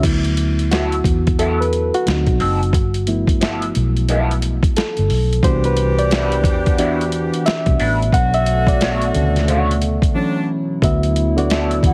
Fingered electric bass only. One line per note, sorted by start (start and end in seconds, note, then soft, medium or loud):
0.04 1.01 D2 medium
1.05 1.89 E2 medium
2.07 2.25 D2 medium
2.28 2.38 B1 medium
2.41 2.74 F#1 medium
2.74 3.71 G1 loud
3.76 4.60 B1 medium
4.99 5.09 G1 medium
5.11 5.39 B1 medium
5.44 6.45 C2 loud
6.45 7.29 E2 medium
7.67 7.78 C2 loud
7.81 8.09 A1 medium
8.13 9.10 B1 loud
9.15 9.99 D2 medium
10.83 11.80 D2 medium
11.84 11.94 E2 medium